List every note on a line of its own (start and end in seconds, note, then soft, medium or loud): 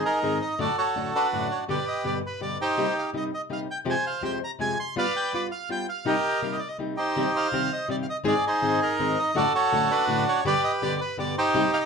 0.00 0.19 G#4 medium
0.05 0.55 D#4 medium
0.05 0.38 A#4 medium
0.23 0.39 G#2 medium
0.23 0.39 D#3 medium
0.23 0.39 G#3 medium
0.23 0.39 C4 medium
0.23 0.39 D#4 medium
0.23 0.39 G#4 medium
0.42 0.59 D#5 medium
0.59 0.67 F#2 medium
0.59 0.67 A2 medium
0.59 0.67 D3 medium
0.59 0.67 A3 medium
0.59 0.68 D4 medium
0.59 0.68 F#4 medium
0.59 0.76 F#4 medium
0.59 0.76 A4 medium
0.59 0.78 D5 medium
0.78 1.14 F#4 medium
0.78 1.27 A4 medium
0.78 1.10 C#5 medium
0.95 1.11 F#2 medium
0.95 1.12 A2 medium
0.95 1.12 D3 medium
0.95 1.12 A3 medium
0.95 1.12 D4 medium
0.95 1.12 F#4 medium
1.15 1.64 D4 medium
1.15 1.64 F#4 medium
1.15 1.47 B4 medium
1.33 1.48 F#2 medium
1.33 1.49 A2 medium
1.33 1.48 D3 medium
1.33 1.49 A3 medium
1.33 1.49 D4 medium
1.33 1.49 F#4 medium
1.51 1.59 C#5 medium
1.68 1.76 G2 medium
1.68 1.76 B2 medium
1.68 1.77 D3 medium
1.68 1.77 G3 medium
1.68 1.77 B3 medium
1.68 1.77 G4 medium
1.68 2.19 G4 medium
1.68 2.19 B4 medium
1.68 1.85 D5 medium
1.88 2.03 D#5 medium
2.04 2.20 G2 medium
2.04 2.20 B2 medium
2.04 2.21 D3 medium
2.04 2.21 G3 medium
2.04 2.21 B3 medium
2.04 2.21 G4 medium
2.04 2.14 D5 medium
2.26 2.41 B4 medium
2.40 2.57 G2 medium
2.40 2.57 B2 medium
2.40 2.57 D3 medium
2.40 2.57 G3 medium
2.40 2.57 B3 medium
2.40 2.57 G4 medium
2.40 2.58 D5 medium
2.61 3.10 D#4 medium
2.61 3.10 G4 medium
2.61 2.94 C5 medium
2.77 2.86 C3 medium
2.77 2.86 G3 medium
2.77 2.86 A#3 medium
2.77 2.86 D#4 medium
2.77 2.86 G4 medium
2.98 3.06 F5 medium
3.13 3.30 C3 medium
3.13 3.30 G3 medium
3.13 3.30 A#3 medium
3.13 3.30 D#4 medium
3.13 3.30 G4 medium
3.13 3.24 D#5 medium
3.34 3.42 D#5 medium
3.49 3.66 C3 medium
3.49 3.66 G3 medium
3.49 3.66 A#3 medium
3.49 3.67 D#4 medium
3.49 3.67 G4 medium
3.49 3.60 F5 medium
3.71 3.78 G5 medium
3.85 3.94 F2 medium
3.85 3.94 C3 medium
3.85 3.94 F3 medium
3.85 3.94 G#3 medium
3.85 3.95 C4 medium
3.85 3.95 G4 medium
3.89 4.38 C5 medium
3.89 4.05 G#5 loud
4.07 4.22 F5 medium
4.22 4.39 F2 medium
4.22 4.39 C3 medium
4.22 4.39 F3 medium
4.22 4.39 G#3 medium
4.22 4.39 C4 medium
4.22 4.39 G4 medium
4.22 4.32 G5 medium
4.44 4.51 A#5 loud
4.59 4.75 F2 medium
4.59 4.76 C3 medium
4.59 4.76 F3 medium
4.59 4.76 G#3 medium
4.59 4.76 C4 medium
4.59 4.76 G4 medium
4.59 4.78 G#5 loud
4.80 4.95 C6 loud
4.96 5.04 G3 medium
4.96 5.05 B3 medium
4.96 5.05 F4 medium
4.96 5.47 B4 medium
4.96 5.33 D5 medium
4.96 5.14 F5 loud
5.16 5.32 G5 medium
5.33 5.49 G3 medium
5.33 5.49 B3 medium
5.33 5.50 F4 medium
5.33 5.42 D5 medium
5.52 5.69 F5 medium
5.69 5.85 G3 medium
5.69 5.86 B3 medium
5.69 5.86 F4 medium
5.69 5.87 G5 medium
5.89 6.06 F5 medium
6.05 6.14 C3 medium
6.05 6.14 G3 medium
6.05 6.14 A#3 medium
6.05 6.14 D#4 medium
6.05 6.14 G4 medium
6.05 6.57 G4 medium
6.05 6.57 A#4 medium
6.05 6.41 D#5 medium
6.42 6.59 C3 medium
6.42 6.59 G3 medium
6.42 6.59 A#3 medium
6.42 6.59 D#4 medium
6.42 6.59 G4 medium
6.42 6.51 F5 medium
6.52 6.60 D#5 medium
6.59 6.68 D5 medium
6.68 6.77 D#5 medium
6.78 6.95 C3 medium
6.78 6.95 G3 medium
6.78 6.95 A#3 medium
6.78 6.96 D#4 medium
6.78 6.96 G4 medium
6.97 7.47 D#4 medium
6.97 7.48 G4 medium
6.97 7.32 C5 medium
7.16 7.24 C3 medium
7.16 7.24 D#3 medium
7.16 7.24 G3 medium
7.16 7.24 C4 medium
7.16 7.25 G4 loud
7.36 7.85 C5 medium
7.36 7.72 F5 medium
7.52 7.68 C3 medium
7.52 7.69 D#3 medium
7.52 7.69 G3 medium
7.52 7.69 C4 medium
7.52 7.69 G4 medium
7.73 7.88 D#5 medium
7.89 8.05 C3 medium
7.89 8.05 D#3 medium
7.89 8.05 G3 medium
7.89 8.06 C4 medium
7.89 8.06 G4 medium
7.89 7.96 D5 medium
8.03 8.06 F5 medium
8.10 8.17 D#5 medium
8.24 8.33 G#2 medium
8.24 8.33 D#3 medium
8.24 8.33 G#3 loud
8.24 8.33 C4 medium
8.24 8.34 D#4 medium
8.24 8.34 G#4 loud
8.24 8.45 G#4 medium
8.28 8.45 D5 medium
8.47 8.80 D#4 medium
8.47 8.96 G#4 medium
8.47 8.80 C5 medium
8.62 8.78 G#2 medium
8.62 8.79 D#3 medium
8.62 8.79 G#3 medium
8.62 8.79 C4 medium
8.62 8.79 D#4 medium
8.62 8.79 G#4 medium
8.82 9.31 D#4 medium
8.82 9.18 A#4 medium
8.99 9.15 G#2 medium
8.99 9.15 D#3 medium
8.99 9.15 G#3 medium
8.99 9.16 C4 medium
8.99 9.16 D#4 medium
8.99 9.16 G#4 medium
9.19 9.36 D#5 medium
9.34 9.43 F#2 loud
9.34 9.43 A2 medium
9.34 9.43 D3 medium
9.34 9.44 A3 medium
9.34 9.44 D4 loud
9.34 9.44 F#4 loud
9.34 9.54 F#4 medium
9.34 9.53 A4 medium
9.34 9.53 D5 loud
9.55 9.89 F#4 medium
9.55 10.04 A4 medium
9.55 9.91 C#5 loud
9.72 9.88 F#2 medium
9.72 9.88 A2 medium
9.72 9.88 D3 medium
9.72 9.88 A3 medium
9.72 9.89 D4 medium
9.72 9.89 F#4 medium
9.91 10.41 D4 medium
9.91 10.41 F#4 medium
9.91 10.24 B4 loud
10.07 10.24 F#2 medium
10.07 10.24 A2 medium
10.07 10.24 D3 medium
10.07 10.24 A3 medium
10.07 10.25 D4 medium
10.07 10.25 F#4 medium
10.29 10.44 C#5 loud
10.44 10.53 G2 medium
10.44 10.53 B2 loud
10.44 10.53 D3 loud
10.44 10.53 G3 loud
10.44 10.54 B3 loud
10.44 10.54 G4 loud
10.44 10.97 G4 medium
10.44 10.96 B4 medium
10.44 10.62 D5 loud
10.64 10.72 D#5 medium
10.81 10.98 G2 medium
10.81 10.98 B2 medium
10.81 10.98 D3 medium
10.81 10.98 G3 medium
10.81 10.99 B3 medium
10.81 10.99 G4 medium
10.81 11.00 D5 loud
11.01 11.17 B4 medium
11.18 11.34 G2 medium
11.18 11.35 B2 medium
11.18 11.34 D3 medium
11.18 11.35 G3 medium
11.18 11.35 B3 medium
11.18 11.35 G4 medium
11.18 11.36 D5 medium
11.38 11.86 D#4 medium
11.38 11.86 G4 medium
11.38 11.71 C5 loud
11.54 11.63 C3 medium
11.54 11.63 G3 medium
11.54 11.63 A#3 medium
11.54 11.63 D#4 medium
11.54 11.63 G4 loud
11.73 11.79 F5 loud
11.80 11.86 D#5 medium